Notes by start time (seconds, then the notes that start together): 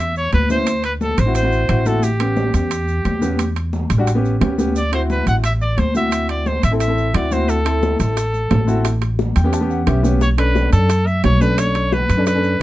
Already playing: E2 E5
0.16 C#5, high conga, maracas
0.33 D2 B4, high conga, high timbale, maracas
0.49 B3 C#4 E4 C5, high conga, maracas
0.67 high conga, high timbale, maracas
0.84 B4, high conga, high timbale, maracas
1.01 A4, high conga, maracas
1.18 A1 C5, high conga, high timbale, maracas
1.26 C4 E4 F#4
1.35 C5, high conga, high timbale, maracas
1.43 C4 E4 F#4
1.52 high conga, maracas
1.69 A1 C4 E4 F#4, high conga, high timbale, maracas
1.86 C4 E4 F#4 A4, high conga, maracas
2.03 G4, high conga, maracas
2.20 B3 C#4 G4, high conga, high timbale, maracas
2.37 high conga, maracas
2.54 E2 G4, high timbale, maracas
2.71 high conga, high timbale, maracas
2.88 high conga, maracas
3.05 E2, high conga, high timbale, maracas
3.21 B3 C#4 G4, high conga, maracas
3.39 high conga, high timbale, maracas
3.56 high conga, high timbale, maracas
3.73 high conga, maracas
3.90 A1, high conga, high timbale, maracas
3.98 G3 D4 F#4
4.07 high conga, high timbale, maracas
4.15 B3 C#4 G4
4.25 high conga, maracas
4.41 D2 B3 C#4 G4, high timbale, low timbale, maracas
4.58 B3 C#4 G4, high conga, maracas
4.76 D5, high conga, maracas
4.92 C4 E4 F#4 C5, high conga, high timbale, maracas
5.10 B4, high conga, maracas
5.26 A1 F#5, high timbale, maracas
5.44 E5, high conga, high timbale, maracas
5.61 D5, high conga, maracas
5.78 D2 C5, high conga, high timbale, maracas
5.95 C4 E4 F#4 E5, high conga, maracas
6.12 high conga, high timbale, maracas
6.29 D5, high timbale, maracas
6.46 C5, high conga, maracas
6.63 A1 E5, high conga, high timbale, maracas
6.71 C4 E4 A4
6.80 E5, high conga, high timbale, maracas
6.88 C4 E4 A4
6.97 high conga, maracas
7.14 D2 C4 E4 F#4 D5, high conga, high timbale, maracas
7.31 C4 E4 F#4 C5, high conga, maracas
7.49 A4, high bongo, high conga, maracas
7.65 C4 E4 A4, high bongo, high timbale, maracas
7.83 high bongo, high conga, maracas
8.00 A1 A4, high bongo, high timbale, maracas
8.17 high bongo, high conga, high timbale, maracas
8.34 high conga, maracas
8.51 A1, high bongo, low bongo, high conga, high timbale, low timbale, maracas
8.67 C4 E4 F#4, high bongo, high conga, maracas
8.85 high bongo, high conga, high timbale, maracas
9.02 high bongo, high conga, high timbale, maracas
9.19 high bongo, high conga, maracas
9.36 E2 G5, high bongo, high conga, high timbale, maracas
9.44 B3 C#4 G4
9.53 A5, high bongo, high conga, high timbale, maracas
9.61 B3 C#4 G4
9.70 F#5, high conga, maracas
9.86 B1 B3 C#4 G4 E5, high bongo, low bongo, high timbale, maracas
10.03 B3 C#4 G4 C#5, high bongo, high conga, maracas
10.21 C#5, high bongo, high conga, maracas
10.37 C#4 D4 A4 B4, high bongo, high conga, high timbale, maracas
10.55 high bongo, high conga, maracas
10.72 F#2 A4, high bongo, high timbale, maracas
10.89 high bongo, high conga, high timbale, maracas
11.06 E5, high conga, maracas
11.24 B1 C#5, high bongo, low bongo, high conga, high timbale, low timbale, maracas
11.40 C#4 D4 A4 B4, high bongo, high conga, maracas
11.58 C#5, high bongo, high conga, high timbale, maracas
11.75 high bongo, high conga, high timbale, maracas
11.92 B4, high bongo, high conga, maracas
12.09 F#2, high bongo, high conga, high timbale, maracas
12.17 C#4 D4 A4
12.26 B4, high bongo, high conga, high timbale, maracas
12.34 C#4 D4 A4
12.44 high conga, maracas